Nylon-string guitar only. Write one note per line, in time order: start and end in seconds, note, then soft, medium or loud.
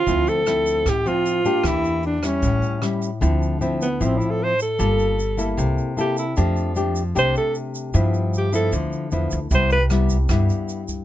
0.06 0.84 D3 soft
0.06 0.43 F3 soft
0.06 0.43 C4 medium
0.06 0.44 E4 medium
0.47 0.86 F3 soft
0.47 0.86 C4 medium
0.47 0.86 E4 medium
0.87 1.63 A2 medium
1.06 1.42 F3 medium
1.06 1.42 C4 medium
1.45 2.20 A#3 medium
1.45 2.21 D4 medium
1.45 2.21 G4 medium
1.65 2.23 E3 soft
2.23 2.79 G3 medium
2.23 2.79 C#4 medium
2.23 2.80 E4 medium
2.44 3.20 A2 soft
2.82 3.09 G3 soft
2.82 3.09 C#4 soft
2.82 3.09 E4 medium
3.21 3.98 D3 medium
3.21 3.58 F3 soft
3.21 3.58 C4 soft
3.21 3.58 E4 medium
3.61 3.87 F3 medium
3.61 3.86 C4 medium
3.61 3.87 E4 medium
4.01 4.77 A2 medium
4.01 4.54 F3 medium
4.01 4.54 C4 medium
4.01 4.54 E4 medium
4.79 5.56 G3 medium
4.79 5.18 A#3 medium
4.79 5.18 F4 medium
4.79 5.18 A4 medium
5.38 5.94 A#3 medium
5.38 5.94 E4 medium
5.38 5.94 A4 medium
5.57 6.34 C3 medium
5.97 6.24 A#3 medium
5.97 6.24 E4 medium
5.97 6.24 A4 medium
6.37 7.13 F3 medium
6.37 6.73 A3 medium
6.37 6.73 D4 medium
6.37 6.73 G4 medium
6.76 7.01 A3 medium
6.76 7.01 D4 medium
6.76 7.02 G4 medium
7.15 7.92 C3 medium
7.15 7.91 A3 medium
7.15 7.91 D4 medium
7.15 7.91 G4 medium
7.94 8.71 G2 medium
7.94 8.50 F3 medium
7.94 8.50 B3 medium
7.94 8.50 E4 medium
8.53 9.09 F3 medium
8.53 9.09 B3 medium
8.53 9.09 E4 medium
8.73 9.50 D3 medium
9.12 9.38 F3 medium
9.12 9.38 B3 medium
9.12 9.39 E4 medium
9.51 10.28 C3 medium
9.51 9.77 G3 medium
9.51 9.77 B3 soft
9.51 9.77 E4 medium
9.91 10.16 G3 medium
9.91 10.16 B3 medium
9.91 10.17 E4 medium
10.30 11.04 G2 medium
10.30 10.83 G3 medium
10.30 10.83 B3 medium
10.30 10.83 E4 medium